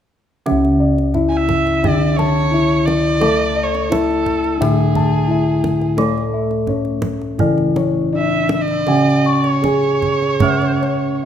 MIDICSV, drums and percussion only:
0, 0, Header, 1, 2, 480
1, 0, Start_track
1, 0, Tempo, 689655
1, 323, Time_signature, 4, 2, 24, 8
1, 4163, Tempo, 705882
1, 5123, Tempo, 749064
1, 6563, Tempo, 797872
1, 7531, End_track
2, 0, Start_track
2, 0, Title_t, "Kendang"
2, 323, Note_on_c, 9, 63, 45
2, 392, Note_off_c, 9, 63, 0
2, 449, Note_on_c, 9, 62, 19
2, 519, Note_off_c, 9, 62, 0
2, 685, Note_on_c, 9, 62, 22
2, 754, Note_off_c, 9, 62, 0
2, 795, Note_on_c, 9, 64, 41
2, 865, Note_off_c, 9, 64, 0
2, 919, Note_on_c, 9, 62, 19
2, 989, Note_off_c, 9, 62, 0
2, 1035, Note_on_c, 9, 63, 46
2, 1035, Note_on_c, 9, 64, 51
2, 1105, Note_off_c, 9, 63, 0
2, 1105, Note_off_c, 9, 64, 0
2, 1161, Note_on_c, 9, 62, 24
2, 1231, Note_off_c, 9, 62, 0
2, 1281, Note_on_c, 9, 64, 57
2, 1351, Note_off_c, 9, 64, 0
2, 1525, Note_on_c, 9, 62, 22
2, 1525, Note_on_c, 9, 63, 48
2, 1594, Note_off_c, 9, 62, 0
2, 1594, Note_off_c, 9, 63, 0
2, 2002, Note_on_c, 9, 62, 18
2, 2002, Note_on_c, 9, 63, 47
2, 2072, Note_off_c, 9, 62, 0
2, 2072, Note_off_c, 9, 63, 0
2, 2238, Note_on_c, 9, 63, 54
2, 2307, Note_off_c, 9, 63, 0
2, 2362, Note_on_c, 9, 62, 16
2, 2431, Note_off_c, 9, 62, 0
2, 2608, Note_on_c, 9, 62, 22
2, 2677, Note_off_c, 9, 62, 0
2, 2728, Note_on_c, 9, 63, 47
2, 2728, Note_on_c, 9, 64, 44
2, 2798, Note_off_c, 9, 63, 0
2, 2798, Note_off_c, 9, 64, 0
2, 2857, Note_on_c, 9, 62, 16
2, 2927, Note_off_c, 9, 62, 0
2, 2967, Note_on_c, 9, 64, 47
2, 3036, Note_off_c, 9, 64, 0
2, 3092, Note_on_c, 9, 62, 19
2, 3162, Note_off_c, 9, 62, 0
2, 3214, Note_on_c, 9, 64, 64
2, 3284, Note_off_c, 9, 64, 0
2, 3448, Note_on_c, 9, 62, 18
2, 3448, Note_on_c, 9, 64, 51
2, 3517, Note_off_c, 9, 62, 0
2, 3517, Note_off_c, 9, 64, 0
2, 3926, Note_on_c, 9, 62, 15
2, 3926, Note_on_c, 9, 63, 44
2, 3926, Note_on_c, 9, 64, 35
2, 3995, Note_off_c, 9, 62, 0
2, 3995, Note_off_c, 9, 63, 0
2, 3995, Note_off_c, 9, 64, 0
2, 4047, Note_on_c, 9, 62, 21
2, 4117, Note_off_c, 9, 62, 0
2, 4161, Note_on_c, 9, 63, 41
2, 4229, Note_off_c, 9, 63, 0
2, 4295, Note_on_c, 9, 62, 14
2, 4363, Note_off_c, 9, 62, 0
2, 4521, Note_on_c, 9, 62, 17
2, 4589, Note_off_c, 9, 62, 0
2, 4633, Note_on_c, 9, 64, 45
2, 4701, Note_off_c, 9, 64, 0
2, 4752, Note_on_c, 9, 62, 17
2, 4820, Note_off_c, 9, 62, 0
2, 4869, Note_on_c, 9, 63, 49
2, 4869, Note_on_c, 9, 64, 41
2, 4937, Note_off_c, 9, 63, 0
2, 4937, Note_off_c, 9, 64, 0
2, 5002, Note_on_c, 9, 62, 19
2, 5070, Note_off_c, 9, 62, 0
2, 5122, Note_on_c, 9, 64, 58
2, 5186, Note_off_c, 9, 64, 0
2, 5240, Note_on_c, 9, 62, 20
2, 5305, Note_off_c, 9, 62, 0
2, 5359, Note_on_c, 9, 62, 18
2, 5359, Note_on_c, 9, 63, 49
2, 5423, Note_off_c, 9, 62, 0
2, 5423, Note_off_c, 9, 63, 0
2, 5828, Note_on_c, 9, 62, 15
2, 5828, Note_on_c, 9, 63, 48
2, 5892, Note_off_c, 9, 62, 0
2, 5892, Note_off_c, 9, 63, 0
2, 5947, Note_on_c, 9, 62, 20
2, 6011, Note_off_c, 9, 62, 0
2, 6067, Note_on_c, 9, 63, 44
2, 6131, Note_off_c, 9, 63, 0
2, 6183, Note_on_c, 9, 62, 17
2, 6247, Note_off_c, 9, 62, 0
2, 6309, Note_on_c, 9, 62, 17
2, 6373, Note_off_c, 9, 62, 0
2, 6435, Note_on_c, 9, 62, 22
2, 6499, Note_off_c, 9, 62, 0
2, 6561, Note_on_c, 9, 63, 39
2, 6561, Note_on_c, 9, 64, 50
2, 6622, Note_off_c, 9, 63, 0
2, 6622, Note_off_c, 9, 64, 0
2, 6678, Note_on_c, 9, 62, 17
2, 6738, Note_off_c, 9, 62, 0
2, 6794, Note_on_c, 9, 64, 47
2, 6854, Note_off_c, 9, 64, 0
2, 6913, Note_on_c, 9, 62, 19
2, 6973, Note_off_c, 9, 62, 0
2, 7021, Note_on_c, 9, 64, 68
2, 7081, Note_off_c, 9, 64, 0
2, 7150, Note_on_c, 9, 62, 20
2, 7210, Note_off_c, 9, 62, 0
2, 7278, Note_on_c, 9, 62, 22
2, 7338, Note_off_c, 9, 62, 0
2, 7531, End_track
0, 0, End_of_file